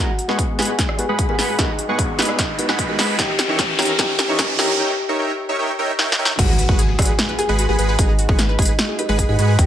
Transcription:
0.00 G#1 G#3 F#4 G#4 B4 F#5 A#5, riser
0.19 closed hi-hat
0.28 G#1 G#3 B3 F#4 G#4 B4 F#5 C#6, snare
0.39 kick, closed hi-hat
0.59 G#1 G#3 G#4 B4 F#5 G#5 B5, snare, closed hi-hat
0.62 closed hi-hat
0.65 G#3 B3 F#4, closed hi-hat
0.70 B4
0.79 kick, snare, closed hi-hat
0.89 cross-stick
0.98 G#3 B3 F#4 G#4 B4 G#5, closed hi-hat
1.09 G#1 G#3 G#4 B4 F#5 B5
1.19 kick, closed hi-hat
1.28 G#3 B3 F#4 G#4 A#4 B4 F#5 G#5 B5
1.39 G#1 G#3 G#4 B4 F#5 B5, snare, open hi-hat
1.58 G#1 G#3 B3 D#4 F#4 G#4 A#4 B4 D#5 F#5 A#5, kick, snare, closed hi-hat
1.79 closed hi-hat
1.88 G#1 G#3 B3 F#4 G#4 B4 F#5 C#6
1.99 kick, closed hi-hat
2.19 G#1 G#3 D#4 G#4 B4 D#5 F#5 B5, snare, closed hi-hat
2.22 closed hi-hat
2.25 G#3 B3 F#4, cross-stick, closed hi-hat
2.30 B4
2.39 kick, snare, closed hi-hat
2.58 G#3 B3 D#4 F#4 B4 D#5, closed hi-hat
2.69 G#1 G#3 G#4 B4 F#5 B5, snare
2.79 kick, closed hi-hat
2.88 G#2 G#3 B3 D#4 F#4 G#4 A#4 B4 D#5 F#5 B5
2.99 G#2 G#3 G#4 B4 F#5 B5, snare, open hi-hat
3.18 D#2 E3 C#4 D#4 G4 A#4 C#5 E5 G5, kick, snare, closed hi-hat
3.39 snare, closed hi-hat
3.48 E3 C#4 D#4 G4 A#4 C#5 E5 C#6
3.59 kick, snare, closed hi-hat
3.79 D#4 G4 A#4 C#5 E5 G5 A#5, snare, closed hi-hat
3.82 closed hi-hat
3.85 E3 C#4 D#4, closed hi-hat
3.90 A#4
3.98 E3 C#4 D#4 G4 A#4 C#5 E5 G5, kick, snare, closed hi-hat
4.19 snare, closed hi-hat
4.28 E3 C#4 D#4 G4 A#4 C#5 E5 C#6
4.39 kick, snare, closed hi-hat
4.59 D#4 G4 A#4 C#5 E5 G5 A#5, snare, open hi-hat
4.68 E3 C#4 D#4 A#4
4.79 D#4 A#4 C#5 E5 G5
5.09 D#4 A#4 C#5 E5 C#6
5.19 D#4 A#4 C#5 E5 G5
5.49 D#4 A#4 C#5 E5 C#6
5.59 D#4 A#4 C#5 E5 G5
5.79 D#4 A#4 C#5 E5 G5
5.99 D#4 A#4 C#5 E5 G5, snare
6.12 snare
6.19 D#4 A#4 C#5 E5 G5
6.25 snare
6.39 G#1 G#3 F#4 G#4 B4 F#5 A#5, kick, closed hi-hat, crash, impact
6.49 G#4
6.59 B4, closed hi-hat
6.69 G#1 G#3 G#4 B4 F#5 C#6, kick
6.79 G#4, closed hi-hat
6.89 G#4
6.99 G#1 G#3 F#4 G#4 B4 F#5 G#5 B5, kick, cross-stick, closed hi-hat
7.02 closed hi-hat
7.05 G#4, closed hi-hat
7.19 B4, snare, closed hi-hat
7.29 B4
7.39 G#4 G#5, closed hi-hat
7.49 G#1 G#3 G#4 B4 F#5 B5
7.59 F#4, closed hi-hat
7.69 G#1 G#3 G#4 B4 F#5 G#5 B5
7.79 G#1 G#3 G#4 B4 F#5 B5, closed hi-hat
7.89 B4
7.99 G#1 G#3 D#4 G#4 B4 D#5 F#5 A#5, kick, closed hi-hat
8.09 G#4
8.19 F#4, closed hi-hat
8.29 G#1 G#3 G#4 B4 F#5 C#6, kick
8.39 B4, snare, closed hi-hat
8.49 B4
8.59 G#1 G#3 D#4 G#4 B4 D#5 F#5 B5, kick, closed hi-hat
8.62 closed hi-hat
8.65 G#4, closed hi-hat
8.79 F#4, snare, closed hi-hat
8.89 G#4
8.99 D#4 B4 D#5, closed hi-hat
9.09 G#1 G#3 G#4 B4 F#5 B5
9.19 G#4, kick, closed hi-hat
9.29 G#2 G#3 D#4 G#4 B4 D#5 F#5 B5
9.39 G#2 G#3 F#4 G#4 B4 F#5 B5, closed hi-hat
9.49 G#4
9.59 D#2 D#4 G4 A#4 C#5 D#5 E5 G5, kick, closed hi-hat

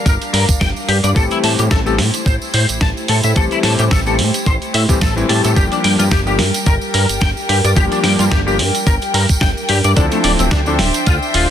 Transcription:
Already playing: G3 D4 A#4 F5
0.06 G1 A#4, kick, closed hi-hat, tambourine
0.21 closed hi-hat, tambourine
0.33 G2 A#4, open hi-hat
0.49 G1, kick, closed hi-hat, tambourine
0.61 G1 G5, kick, snare, closed hi-hat, tambourine
0.76 tambourine
0.88 G2 G4, open hi-hat
1.04 G2 D5, closed hi-hat, tambourine
1.15 A1 E3 G3 A3 C4 E4 G4 A4 C5, kick, closed hi-hat, tambourine
1.31 E4, closed hi-hat, tambourine
1.43 A2 A5, open hi-hat
1.59 A2 G4, closed hi-hat, tambourine
1.71 A1 A4, kick, snare, closed hi-hat, tambourine
1.85 E3 G3 A3 C4 G4 A4, tambourine
1.98 A2, snare, open hi-hat
2.14 closed hi-hat, tambourine
2.26 A1 C5, kick, closed hi-hat, tambourine
2.42 tambourine
2.54 A2 C5, open hi-hat
2.69 A1, closed hi-hat, tambourine
2.81 A1 A5, kick, snare, closed hi-hat, tambourine
2.97 tambourine
3.08 A2 A4, open hi-hat
3.23 A2 E5, closed hi-hat, tambourine
3.35 A1 E3 G3 A3 C4 G4 A4, kick, closed hi-hat, tambourine
3.51 E4, closed hi-hat, tambourine
3.63 A2 A5, snare, open hi-hat
3.79 A2 G4, closed hi-hat, tambourine
3.91 A1 A4, kick, snare, closed hi-hat, tambourine
4.06 E3 G3 A3 C4 G4 A4, tambourine
4.19 A2, open hi-hat
4.34 closed hi-hat, tambourine
4.46 A1 C5, kick, closed hi-hat, tambourine
4.62 closed hi-hat, tambourine
4.74 A2 E5, open hi-hat
4.89 A1 E3 G3 A3 C4 G4, kick, closed hi-hat, tambourine
5.01 A1 A4, kick, snare, closed hi-hat, tambourine
5.16 E3 G3 A3 C4 E4, tambourine
5.28 A2 E3 G3 A3 C4 G4 A5, open hi-hat
5.44 A2 A4, closed hi-hat, tambourine
5.55 G1 F3 G3 A#3 D4 G4 A#4 G5, kick, closed hi-hat, tambourine
5.72 D4, closed hi-hat, tambourine
5.84 G2 G5, open hi-hat
5.99 G2 F4, closed hi-hat, tambourine
6.11 G1 G4, kick, snare, closed hi-hat, tambourine
6.26 F3 G3 A#3 D4 G4, tambourine
6.39 G2, snare, open hi-hat
6.54 closed hi-hat, tambourine
6.66 G1 A#4, kick, closed hi-hat, tambourine
6.81 tambourine
6.94 G2 A#4, open hi-hat
7.09 G1, closed hi-hat, tambourine
7.21 G1 G5, kick, snare, closed hi-hat, tambourine
7.37 tambourine
7.49 G2 G4, open hi-hat
7.64 G2 D5, closed hi-hat, tambourine
7.75 G1 F3 G3 A#3 D4 G4, kick, closed hi-hat, tambourine
7.92 D4, closed hi-hat, tambourine
8.04 G2 G5, snare, open hi-hat
8.19 G2 F4, closed hi-hat, tambourine
8.31 G1 G4, kick, snare, closed hi-hat, tambourine
8.46 F3 G3 A#3 D4 G4, tambourine
8.59 G2, open hi-hat
8.75 closed hi-hat, tambourine
8.87 G1 A#4, kick, closed hi-hat, tambourine
9.02 closed hi-hat, tambourine
9.14 G2 A#4, open hi-hat
9.29 G1, kick, closed hi-hat, tambourine
9.41 G1 G5, kick, snare, closed hi-hat, tambourine
9.57 tambourine
9.69 G2 G4, open hi-hat
9.84 G2 D5, closed hi-hat, tambourine
9.96 D2 F3 C4 D4 E4 A4 C5 E5, kick, closed hi-hat, tambourine
10.11 A3, closed hi-hat, tambourine
10.24 D1 D5, open hi-hat
10.39 D1 C4, closed hi-hat, tambourine
10.51 D2 D4, kick, snare, closed hi-hat, tambourine
10.66 F3 C4 D4 E4 A4, tambourine
10.79 D1, snare, open hi-hat
10.94 closed hi-hat, tambourine
11.06 D2 F4, kick, closed hi-hat, tambourine
11.22 tambourine
11.34 D1 F4, open hi-hat

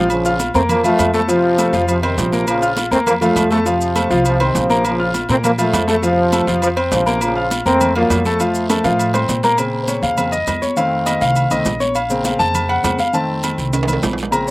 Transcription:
Already playing: A#1
0.10 C#3 F3, low agogo, long guiro, maracas
0.25 F4 F5 F6, high conga, maracas
0.39 high conga, low timbale, low agogo, short guiro, maracas
0.54 F2 A3 A#3 C4 A#4 A#5, high conga, short guiro, maracas
0.69 F3 A#3, high conga, low conga, low agogo, long guiro, maracas
0.84 F3 A3 F4 F5, high conga, low conga, low agogo, maracas
0.98 F2, high conga, low timbale, low agogo, short guiro, maracas
1.14 F3 A3 A4 A5, high conga, short guiro, maracas
1.28 C3 F3 F4 F5, low agogo, long guiro, maracas
1.58 A3 A4 A5, high conga, low timbale, low agogo, short guiro, maracas
1.73 F2 F3 F4 F5, short guiro, maracas
1.88 C3 F3, high conga, low agogo, long guiro, maracas
2.03 C3 D#3 C4 C5 C6, high conga, low agogo
2.18 A#1 C3 F3, high conga, low timbale, short guiro, maracas
2.32 A#3 A#4 A#5, high conga, short guiro, maracas
2.47 C#3 F3, high conga, low agogo, long guiro, maracas
2.62 F4 F5 F6, high conga, maracas
2.77 high conga, low timbale, low agogo, short guiro, maracas
2.91 F2 A3 A#3 C4 A#4 A#5, high conga, short guiro, maracas
3.06 F3 A#3, high conga, low conga, low agogo, long guiro, maracas
3.21 F3 A3 F4 F5, high conga, low conga, low agogo, maracas
3.36 F2, high conga, low timbale, low agogo, short guiro, maracas
3.51 F3 A3 A4 A5, high conga, short guiro, maracas
3.66 C3 F3 F4 F5, low agogo, long guiro, maracas
3.81 high conga, maracas
3.95 A3 A4 A5, high conga, low timbale, low agogo, short guiro, maracas
4.10 C2 F3 F4 F5, high conga, short guiro, maracas
4.25 C3 F3, high conga, low agogo, long guiro, maracas
4.40 C3 D#3 C4 C5 C6, high conga, low agogo
4.55 A#1 C3 F3, high conga, low timbale, short guiro, maracas
4.70 A#3 A#4 A#5, high conga, short guiro, maracas
4.85 C#3 F3, high conga, low agogo, long guiro, maracas
4.99 F4 F5 F6, high conga
5.14 high conga, low timbale, low agogo, short guiro, maracas
5.29 A#2 A3 A#3 C4 A#4 A#5, high conga, short guiro, maracas
5.44 F3 A#3, high conga, low conga, low agogo, long guiro, maracas
5.58 F3 A3 F4 F5, low agogo, maracas
5.73 F2, high conga, low timbale, low agogo, short guiro, maracas
5.87 F3 A3 A4 A5, high conga, short guiro, maracas
6.02 C3 F3 F4 F5, high conga, low agogo, long guiro, maracas
6.18 high conga
6.32 A3 A4 A5, high conga, low timbale, low agogo, short guiro, maracas
6.47 F2 F3 F4 F5, high conga, short guiro, maracas
6.62 C3 F3, high conga, low agogo, long guiro, maracas
6.76 C4 C5 C6, high conga, low agogo
6.92 A#1 C3 F3, high conga, low timbale, short guiro, maracas
7.06 A#3 A#4 A#5, high conga, short guiro, maracas
7.21 C#3 F3, high conga, low agogo, long guiro, maracas
7.36 F4 F5 F6, high conga
7.51 high conga, low timbale, low agogo, short guiro, maracas
7.66 F2 A3 A#3 C4 A#4 A#5, high conga, short guiro, maracas
7.81 high conga, low conga, low agogo, long guiro, maracas
7.95 F3 F#3 A#3 F4 F5, high conga, low conga, low agogo
8.10 F2, high conga, low timbale, low agogo, short guiro, maracas
8.25 F3 A3 A4 A5, high conga, short guiro, maracas
8.40 F3 F4 F5, low agogo, long guiro, maracas
8.55 maracas
8.69 A3 A4 A5, high conga, high timbale, low agogo, short guiro, maracas
8.84 A2 F3 F4 F5, high conga, high timbale, short guiro, maracas
8.99 high conga, low agogo, long guiro, maracas
9.14 C4 C5 C6, high conga, low timbale, low agogo, maracas
9.28 A#2, high conga, low timbale, short guiro, maracas
9.43 A#3 A#4 A#5, high conga, low timbale, short guiro, maracas
9.58 C#3 A#3 C4, high conga, low agogo, long guiro, maracas
9.73 high conga
9.83 C5
9.88 C#5, high conga, low timbale, low agogo, short guiro, maracas
10.02 F2 F5, high conga, short guiro, maracas
10.17 C#3 A#3 C4, high conga, low conga, low agogo, long guiro, maracas
10.32 D#5, high conga, low conga, low agogo, maracas
10.47 F2, high conga, low timbale, low agogo, short guiro, maracas
10.62 C#5, high conga, short guiro, maracas
10.76 D#3 A3 C4 F5, high conga, low agogo, long guiro, maracas
10.92 high conga
11.06 D#5, high conga, low timbale, low agogo, short guiro, maracas
11.21 C2 F5, high conga, short guiro, maracas
11.36 high conga, low agogo, long guiro, maracas
11.50 C2 D#3 A3 C4 D#5, low agogo, maracas
11.65 A#1, high conga, low timbale, short guiro, maracas
11.80 C#5, high conga, short guiro, maracas
11.95 F5, high conga, low agogo, long guiro, maracas
12.10 C#3 A#3 C4, high conga, maracas
12.25 F5, high conga, low timbale, low agogo, short guiro, maracas
12.39 F2 A5, high conga, short guiro, maracas
12.54 high conga, low conga, low agogo, long guiro, maracas
12.69 F#5, high conga, low agogo
12.83 F2 C#3 A#3 C4, high conga, low timbale, low agogo, short guiro, maracas
12.99 F5, high conga, short guiro, maracas
13.13 D#3 A3 C4 A5, low agogo, long guiro, maracas
13.29 high conga
13.43 high conga, low timbale, low agogo, short guiro, maracas
13.58 C2, high conga, short guiro, maracas
13.73 high conga, high timbale, low agogo, long guiro, maracas
13.83 high timbale
13.87 D#3 A3 C4, high conga, low agogo, maracas
13.93 high timbale
14.03 A#1, high conga, low timbale, short guiro, maracas
14.13 low timbale
14.18 short guiro, maracas
14.23 low timbale
14.31 C#3 A#3 C4 A#5, low agogo, long guiro, maracas
14.47 C#5, high conga

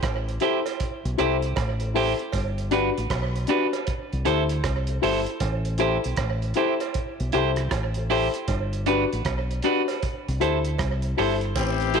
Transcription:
0.03 A1, kick, cross-stick, closed hi-hat, cowbell
0.29 closed hi-hat
0.40 E4 G4 A4 C5, closed hi-hat
0.66 A4 C5, closed hi-hat, cowbell
0.80 kick, closed hi-hat
1.05 B1, closed hi-hat
1.18 C2 E4 G4 A4 C5, closed hi-hat
1.42 closed hi-hat
1.56 A1, kick, cross-stick, closed hi-hat, cowbell
1.80 A4 C5, closed hi-hat
1.94 E4 G4 A4 C5, open hi-hat
2.19 closed hi-hat
2.32 G1, kick, closed hi-hat, cowbell
2.58 closed hi-hat
2.71 D4 F#4 G4 B4, closed hi-hat
2.98 A1, closed hi-hat
3.10 B1, kick, cross-stick, closed hi-hat, cowbell
3.36 closed hi-hat
3.47 D4 F#4 G4 B4, closed hi-hat
3.73 G4 B4, closed hi-hat, cowbell
3.87 kick, closed hi-hat
4.13 C2, closed hi-hat
4.25 D2 E4 G4 A4 C5, closed hi-hat
4.49 closed hi-hat
4.64 C2, kick, cross-stick, closed hi-hat, cowbell
4.87 A4 C5, closed hi-hat
5.02 G1 E4 G4 A4 C5, open hi-hat
5.26 closed hi-hat
5.40 A1, kick, closed hi-hat, cowbell
5.65 closed hi-hat
5.78 E4 G4 A4 C5, closed hi-hat
6.04 B1, closed hi-hat
6.16 A1, kick, cross-stick, closed hi-hat, cowbell
6.42 closed hi-hat
6.54 E4 G4 A4 C5, closed hi-hat
6.80 A4 C5, closed hi-hat, cowbell
6.94 kick, closed hi-hat
7.20 B1, closed hi-hat
7.32 C2 E4 G4 A4 C5, closed hi-hat
7.56 cross-stick, closed hi-hat
7.71 A1, kick, cross-stick, closed hi-hat, cowbell
7.94 A4 C5, closed hi-hat
8.10 E4 G4 A4 C5, open hi-hat
8.34 closed hi-hat
8.48 G1, kick, closed hi-hat, cowbell
8.73 closed hi-hat
8.86 D4 F#4 G4 B4, closed hi-hat
9.13 A1, closed hi-hat
9.25 B1, kick, cross-stick, closed hi-hat, cowbell
9.51 closed hi-hat
9.62 D4 F#4 G4 B4, closed hi-hat
9.88 G4 B4, closed hi-hat, cowbell
10.03 kick, closed hi-hat
10.28 C2, closed hi-hat
10.40 D2 E4 G4 A4 C5, closed hi-hat
10.65 closed hi-hat
10.78 C2, kick, cross-stick, closed hi-hat, cowbell
11.02 closed hi-hat
11.17 G1 E4 G4 A4 C5, open hi-hat
11.41 closed hi-hat
11.56 A1 E3 C4 G4, kick, closed hi-hat, cowbell, vibraslap
11.81 closed hi-hat
11.94 E4 G4 A4 C5, closed hi-hat

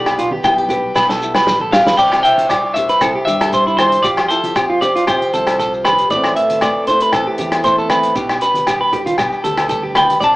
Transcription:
Already playing: B1 B2 D4 G4 B4 D5
0.06 B4, cross-stick, low agogo
0.17 F4, closed hi-hat, low conga, shekere
0.31 G4, high conga
0.44 B1 G3 E4 G5, muted clean electric guitar stroke, kick, cross-stick, low agogo, shekere
0.58 G4
0.69 G4 B4, closed hi-hat, high conga, low conga, shekere
0.96 B1 B2 B4, kick, snare, low agogo, shekere
1.09 A4, snare
1.22 E4, shekere
1.35 G4 B4, snare, low agogo
1.47 A1 G3, kick, snare, high conga, shekere
1.60 A4, high conga
1.72 B1 D4 G4 F5, snare, low conga, low agogo, shekere
1.87 B4, snare, high conga
1.97 C2 C3 D4 E4 C5 D5 G5, kick, crash, shekere
2.12 cross-stick, low agogo
2.23 E4 E5 G5, closed hi-hat, shekere
2.38 closed hi-hat, high conga
2.49 G3 D5, kick, cross-stick, closed hi-hat, low agogo, shekere
2.74 G4 E5, closed hi-hat, low conga, shekere
2.89 B4, closed hi-hat, shekere
3.01 C2 C3 E4 A4, kick, cross-stick, closed hi-hat, low agogo, shekere
3.15 G4
3.25 G2 G4 E5, closed hi-hat, high conga, shekere
3.41 A4, cross-stick, closed hi-hat, low agogo
3.53 G3 C5, kick, closed hi-hat, shekere
3.67 E4, shekere
3.77 E4 C5, cross-stick, closed hi-hat, high conga, low conga, low agogo, shekere
3.92 closed hi-hat, shekere
4.03 F2 F3 F4 G4 D5, kick, closed hi-hat, shekere
4.17 cross-stick, low agogo
4.28 E4 A4 C5, closed hi-hat, shekere
4.44 G4, closed hi-hat, high conga
4.56 C4 G4, kick, cross-stick, closed hi-hat, low agogo, shekere
4.70 F4
4.81 G4 C5 D5, closed hi-hat, low conga, shekere
4.96 F4, closed hi-hat, shekere
5.07 F2 C3 E4 G4 C5, kick, cross-stick, closed hi-hat, low agogo, shekere
5.22 G4
5.34 C2 E4 A4, closed hi-hat, high conga, shekere
5.47 G4, cross-stick, closed hi-hat, low agogo
5.59 C4 A4, kick, closed hi-hat, shekere
5.74 shekere
5.85 G4 B4, cross-stick, closed hi-hat, high conga, low conga, low agogo, shekere
5.99 closed hi-hat, shekere
6.10 A1 A2 A3 C4 A4 B4 D5, kick, closed hi-hat, shekere
6.14 E4 B4
6.24 cross-stick, low agogo
6.36 E5, muted nylon-string guitar stroke, closed hi-hat
6.50 closed hi-hat, high conga
6.61 A3 D5, kick, cross-stick, closed hi-hat, low agogo, shekere
6.87 E4 C5, closed hi-hat, low conga, shekere
7.00 B4, closed hi-hat
7.12 A1 E3 C4 A4, kick, cross-stick, closed hi-hat, low agogo, shekere
7.27 G4
7.38 E2 E4 G4, closed hi-hat, high conga, shekere
7.52 cross-stick, closed hi-hat, low agogo
7.64 A3 C5, kick, closed hi-hat, shekere
7.78 A4, shekere
7.90 C4 B4, cross-stick, closed hi-hat, high conga, low agogo, shekere
8.03 closed hi-hat, shekere
8.16 B1 B2 D4 G4, kick, closed hi-hat, shekere
8.29 cross-stick, low agogo, shekere
8.41 D4 B4, closed hi-hat, shekere
8.54 closed hi-hat, high conga, shekere
8.67 G3 G4, kick, cross-stick, closed hi-hat, low agogo, shekere
8.81 B4
8.93 G4, closed hi-hat, low conga
9.06 F4, closed hi-hat, high conga, shekere
9.18 B1 B2 D4 G4, kick, cross-stick, closed hi-hat, low agogo, shekere
9.32 shekere
9.44 D2 G4 A4, closed hi-hat, high conga, shekere
9.58 cross-stick, closed hi-hat, low agogo, shekere
9.69 G3 A4, kick, closed hi-hat, high conga, shekere
9.83 G4
9.95 D4 B4 G5, cross-stick, closed hi-hat, high conga, low conga, low agogo, shekere
10.10 closed hi-hat, shekere
10.20 C2 E4 C5 D5 A5, muted nylon-string guitar stroke, kick, closed hi-hat, shekere

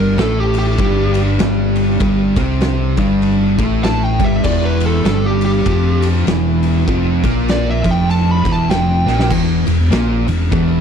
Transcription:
Already playing: G1 G2 G3 A#4
0.18 A1 A2 A3 A4, snare, ride
0.39 G4
0.54 ride
0.59 G4
0.78 G1 G2 G3, kick, ride
1.14 ride
1.39 G1 G2 G3, snare, ride
1.76 ride
2.00 G1 G2 G3, kick, ride
2.36 C2 C3 C4, kick, ride
2.61 snare, ride
2.97 G1 G2 G3, kick, ride
3.22 ride
3.58 A1 A2 A3, kick, ride
3.83 A5, snare, ride
4.05 G5
4.19 G1 G2 G3, kick, ride
4.24 E5
4.44 E1 E2 E3 D5, kick, crash
4.65 B4
4.80 ride
4.86 A4
5.04 G1 G2 G3 A4, snare, ride
5.25 G4
5.41 ride
5.45 G4
5.65 F1 F2 F3, kick, ride
6.02 ride
6.26 E1 E2 E3, snare, ride
6.63 ride
6.87 F1 F2 F3, kick, ride
7.23 A#1 A#2 A#3, kick, ride
7.48 D5, snare, ride
7.71 E5
7.84 F1 F2 F3, kick, ride
7.91 G5
8.10 A5, ride
8.31 B5
8.44 E1 E2 E3, kick, ride
8.52 A5
8.70 F1 F2 F3 G5, snare, ride
9.06 A#1 A#2 A#3, snare
9.19 snare
9.30 E1 E2 E3, kick, crash
9.66 E1 E2, ride
9.90 A#1 A#2 A#3, snare, ride
10.27 E1 E2, ride
10.52 E1 E2 E3, kick, ride

